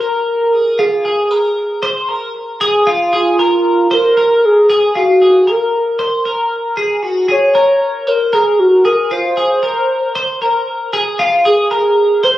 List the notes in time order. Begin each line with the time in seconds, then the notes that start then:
0.01 A#4
0.53 G#4
0.79 F4 G#4
1.05 G#4
1.31 A#4
1.83 C5
2.09 A#4
2.61 G#4
2.87 F4
3.13 F4 G#4
3.39 A#4
3.91 A#4 C5
4.17 A#4
4.45 G#4
4.70 G#4
4.95 F4 F#4
5.22 G#4
5.47 A#4
5.99 C5
6.25 A#4
6.77 G#4
7.03 F#4
7.28 G#4 C#5
7.55 A#4
8.07 A#4 C5
8.33 G#4 A#4
8.59 F#4
8.85 G#4 A#4
9.11 F4 C5
9.37 G#4
9.63 A#4
10.15 C5
10.42 A#4
10.93 G#4
11.19 F4
11.45 G#4
11.71 A#4
12.23 C5